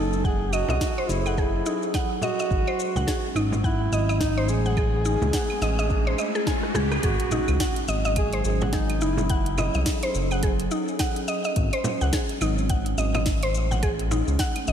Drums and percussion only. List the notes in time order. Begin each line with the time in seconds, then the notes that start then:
0.13 shaker
0.24 kick, shaker
0.53 claves, shaker
0.69 frame drum, shaker
0.81 kick, snare, shaker
1.09 snare, shaker
1.26 claves, shaker
1.38 kick, shaker
1.66 shaker
1.83 shaker
1.94 kick, snare, claves, shaker
2.22 frame drum, shaker
2.39 shaker
2.51 kick, shaker
2.67 claves
2.79 shaker
2.96 frame drum, shaker
3.07 kick, snare
3.36 claves, shaker
3.52 frame drum, shaker
3.64 kick, shaker
3.93 shaker
4.09 claves, shaker
4.20 kick, snare, shaker
4.49 shaker
4.66 shaker
4.77 kick, claves, shaker
5.05 shaker
5.22 frame drum, shaker
5.33 kick, snare
5.50 claves
5.62 snare, shaker
5.79 shaker
5.90 kick, shaker
6.18 claves, shaker
6.35 shaker
6.47 kick, snare, shaker
6.63 cross-stick
6.74 cross-stick, frame drum, shaker
6.92 cross-stick, claves, shaker
7.03 kick, closed hi-hat, shaker
7.20 closed hi-hat
7.31 frame drum, shaker
7.48 claves, shaker
7.60 kick, snare, closed hi-hat, shaker
7.76 closed hi-hat
7.88 shaker
8.05 shaker
8.16 kick, closed hi-hat, claves, shaker
8.33 closed hi-hat
8.45 shaker
8.61 frame drum, shaker
8.73 kick, snare, closed hi-hat, shaker
8.90 closed hi-hat, claves
9.01 shaker
9.17 frame drum, shaker
9.30 kick, closed hi-hat, shaker
9.46 closed hi-hat
9.58 frame drum, claves, shaker
9.74 shaker
9.86 kick, snare, closed hi-hat, shaker
10.03 closed hi-hat
10.15 shaker
10.31 claves, shaker
10.43 kick, closed hi-hat, shaker
10.60 closed hi-hat
10.71 shaker
10.88 shaker
10.99 kick, snare, closed hi-hat, claves, shaker
11.16 closed hi-hat
11.28 shaker
11.44 shaker
11.56 kick, closed hi-hat, shaker
11.73 closed hi-hat, claves
11.84 frame drum, shaker
12.01 shaker
12.13 kick, snare, closed hi-hat, shaker
12.29 closed hi-hat
12.41 claves, shaker
12.58 shaker
12.70 kick, closed hi-hat, shaker
12.86 closed hi-hat
12.98 shaker
13.14 frame drum, claves, shaker
13.26 kick, snare, closed hi-hat, shaker
13.43 closed hi-hat
13.54 shaker
13.72 frame drum, shaker
13.83 kick, closed hi-hat, claves, shaker
13.99 closed hi-hat
14.11 frame drum, shaker
14.28 shaker
14.39 kick, snare, closed hi-hat
14.56 closed hi-hat, claves
14.67 shaker